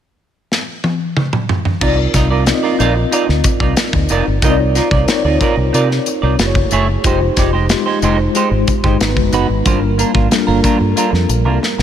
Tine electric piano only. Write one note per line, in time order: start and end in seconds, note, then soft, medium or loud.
1.81 2.30 C4 medium
1.81 2.31 D#4 medium
1.81 2.31 F4 medium
1.81 2.31 A#4 medium
1.81 2.31 D5 medium
2.46 3.45 C4 medium
2.46 3.45 D#4 medium
2.46 3.45 F4 medium
2.46 3.45 A#4 medium
2.46 2.53 D5 medium
2.54 3.49 D#5 medium
4.43 4.92 C4 medium
4.43 4.92 D#4 medium
4.43 4.93 F4 medium
4.43 4.93 A#4 medium
4.43 4.50 C#5 medium
4.50 4.96 D5 medium
5.08 6.06 C4 medium
5.08 6.07 D#4 medium
5.08 6.07 F4 medium
5.08 6.07 A#4 medium
5.08 5.15 C#5 medium
5.16 6.10 D5 medium
6.39 6.91 A3 medium
6.39 6.91 E4 medium
6.39 6.91 F#4 medium
6.39 6.91 G#4 medium
6.39 6.46 B4 medium
6.46 6.95 C#5 medium
7.03 7.53 G#3 medium
7.03 7.53 D#4 medium
7.03 7.53 F4 medium
7.03 7.54 G4 medium
7.03 7.54 C5 medium
7.69 8.68 G#3 medium
7.69 8.68 D#4 medium
7.69 8.68 F4 medium
7.69 8.69 G4 medium
7.69 8.68 C5 medium
9.00 9.53 G#3 medium
9.00 9.53 B3 medium
9.00 9.53 D#4 medium
9.00 9.53 F#4 medium
9.00 9.53 B4 medium
9.65 10.15 G3 medium
9.65 10.15 A#3 medium
9.65 10.15 D4 medium
9.65 10.15 F4 medium
9.65 10.16 A#4 medium
10.31 11.30 G3 medium
10.31 11.30 A#3 medium
10.31 11.30 D4 medium
10.31 11.30 F4 medium
10.31 10.38 A4 medium
10.39 11.33 A#4 medium